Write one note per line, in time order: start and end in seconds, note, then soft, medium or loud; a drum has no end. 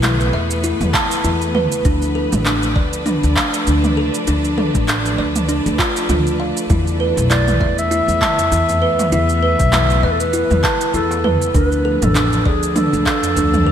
0.00 0.29 B1 medium
0.00 1.85 E3 medium
0.00 13.72 A3 medium
0.00 3.46 B3 medium
0.00 0.19 E4 medium
0.00 13.72 B4 medium
0.00 clap medium
0.00 mid tom medium
0.00 shaker medium
0.20 shaker soft
0.33 0.75 E2 medium
0.33 0.43 E5 medium
0.51 shaker medium
0.64 0.93 E4 medium
0.64 shaker medium
0.81 0.91 E2 medium
0.81 mid tom medium
0.81 shaker soft
0.94 1.04 A5 medium
0.94 kick loud
0.94 clap medium
1.11 shaker medium
1.24 1.66 E2 medium
1.24 1.41 E4 medium
1.24 shaker medium
1.42 shaker soft
1.55 1.65 B4 medium
1.55 mid tom medium
1.72 shaker medium
1.85 2.27 D2 medium
1.85 6.70 F3 medium
1.85 2.14 D4 medium
1.85 kick loud
1.85 shaker medium
2.02 shaker soft
2.15 2.32 A4 medium
2.32 2.71 A1 medium
2.32 mid tom medium
2.32 shaker medium
2.37 8.04 D4 medium
2.45 2.62 D4 medium
2.45 clap medium
2.45 shaker medium
2.63 shaker soft
2.76 3.18 D2 medium
2.76 2.86 D5 medium
2.76 kick loud
2.93 shaker medium
3.06 3.35 D4 medium
3.06 mid tom medium
3.06 shaker medium
3.23 3.34 D2 medium
3.23 shaker soft
3.36 3.46 F5 medium
3.36 kick medium
3.36 clap medium
3.54 shaker medium
3.67 4.09 D2 medium
3.67 3.83 D4 medium
3.67 shaker medium
3.84 mid tom medium
3.84 shaker soft
3.97 4.07 A4 medium
4.14 shaker medium
4.27 4.69 D2 medium
4.27 4.56 D4 loud
4.27 shaker medium
4.45 shaker soft
4.58 4.74 A4 medium
4.58 mid tom medium
4.75 5.14 A1 medium
4.75 kick loud
4.75 shaker medium
4.88 5.04 D4 medium
4.88 clap medium
4.88 shaker medium
5.06 shaker soft
5.18 5.60 D2 medium
5.18 5.28 D5 medium
5.36 mid tom medium
5.36 shaker medium
5.49 5.64 D4 medium
5.49 shaker medium
5.66 5.76 D2 medium
5.66 shaker soft
5.79 5.95 F4 medium
5.79 kick loud
5.79 clap medium
5.96 shaker medium
6.09 6.51 D2 medium
6.09 6.25 F4 medium
6.09 mid tom medium
6.09 shaker medium
6.27 shaker soft
6.40 6.55 F5 medium
6.57 shaker medium
6.70 7.12 E2 loud
6.70 11.55 E3 medium
6.70 6.99 E4 medium
6.70 kick loud
6.70 mid tom medium
6.70 shaker medium
6.87 shaker soft
7.00 7.16 B4 medium
7.17 7.56 B1 medium
7.17 darbuka ka soft
7.17 darbuka dum medium
7.17 shaker medium
7.30 7.47 E4 medium
7.30 7.75 D5 loud
7.30 clap medium
7.30 shaker medium
7.41 13.50 B3 medium
7.48 mid tom medium
7.48 shaker soft
7.60 8.02 E2 medium
7.60 7.71 E5 medium
7.60 kick loud
7.60 darbuka tek medium
7.78 9.08 E5 loud
7.78 shaker medium
7.91 8.20 E4 loud
7.91 shaker medium
8.08 8.19 E2 medium
8.08 shaker soft
8.21 8.31 A5 medium
8.21 kick medium
8.21 clap medium
8.21 mid tom medium
8.38 darbuka tek medium
8.38 darbuka dum medium
8.38 shaker medium
8.52 8.93 E2 medium
8.52 8.68 E4 medium
8.52 shaker medium
8.69 darbuka dum medium
8.69 shaker soft
8.82 8.92 B4 medium
8.99 mid tom medium
8.99 darbuka tek medium
8.99 shaker medium
9.12 9.54 E2 loud
9.12 9.41 E4 loud
9.12 10.05 E5 loud
9.12 shaker soft
9.29 shaker soft
9.43 9.59 B4 medium
9.59 9.99 B1 medium
9.59 kick medium
9.59 darbuka ka soft
9.59 darbuka dum medium
9.59 shaker medium
9.73 9.89 E4 medium
9.73 clap medium
9.73 mid tom medium
9.73 shaker medium
9.90 darbuka tek soft
9.90 shaker soft
10.03 10.45 E2 medium
10.03 10.13 B4 loud
10.03 10.13 E5 medium
10.03 darbuka tek medium
10.11 10.21 A4 medium
10.20 10.94 B4 loud
10.20 shaker medium
10.33 10.62 E4 medium
10.33 shaker medium
10.51 10.61 E2 medium
10.51 mid tom medium
10.51 shaker soft
10.64 10.74 A5 medium
10.64 kick loud
10.64 clap medium
10.81 darbuka ka soft
10.81 shaker medium
10.94 11.36 E2 medium
10.94 11.10 E4 medium
10.94 11.26 A4 medium
10.94 shaker medium
11.11 darbuka tek medium
11.11 shaker soft
11.24 11.34 B4 medium
11.24 mid tom medium
11.24 darbuka dum medium
11.41 darbuka ka soft
11.41 shaker medium
11.54 11.96 D2 loud
11.54 13.72 F3 medium
11.54 11.84 D4 medium
11.54 12.05 B4 medium
11.54 kick loud
11.54 shaker soft
11.72 shaker soft
11.85 12.01 A4 medium
12.02 12.41 A1 loud
12.02 13.72 D4 medium
12.02 12.46 A4 medium
12.02 mid tom medium
12.02 darbuka ka soft
12.02 darbuka dum medium
12.02 shaker medium
12.15 12.32 D4 medium
12.15 clap medium
12.15 shaker medium
12.33 shaker soft
12.45 12.87 D2 medium
12.45 12.78 G#4 medium
12.45 12.55 D5 medium
12.45 kick loud
12.45 darbuka tek medium
12.63 shaker medium
12.76 13.05 D4 loud
12.76 13.72 A4 medium
12.76 mid tom medium
12.76 shaker medium
12.93 13.03 D2 medium
12.93 shaker soft
13.06 13.16 F5 medium
13.06 kick medium
13.06 clap medium
13.23 darbuka tek medium
13.23 darbuka dum medium
13.23 shaker medium
13.36 13.72 D2 medium
13.36 13.53 D4 medium
13.36 shaker medium
13.54 mid tom medium
13.54 darbuka dum medium
13.54 shaker soft
13.66 13.72 A4 medium